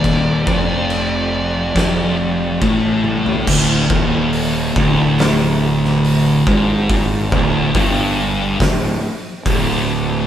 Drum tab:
CC |x---x---x---x---|x---------------|----------------|
HH |----------------|----o---o---o---|o---o---o---o---|
SD |--------o-------|--------o--o----|--------o-------|
T1 |--------------o-|----------------|----------------|
FT |---------------o|----------------|----------------|
BD |o-o-----o---o---|o-o---o-------o-|o-o-o---o---o---|